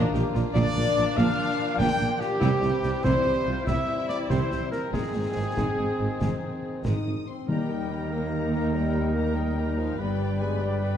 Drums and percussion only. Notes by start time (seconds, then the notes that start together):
0.14 snare
0.35 snare
0.56 concert bass drum, snare
1.18 concert bass drum, snare
1.80 concert bass drum, snare
2.21 snare
2.41 concert bass drum, snare
2.62 snare
2.83 snare
3.04 concert bass drum, snare
3.67 concert bass drum, snare
4.09 snare
4.30 concert bass drum, snare
4.51 snare
4.72 snare
4.94 concert bass drum, snare
5.57 concert bass drum, snare
6.21 concert bass drum, snare
6.85 concert bass drum, snare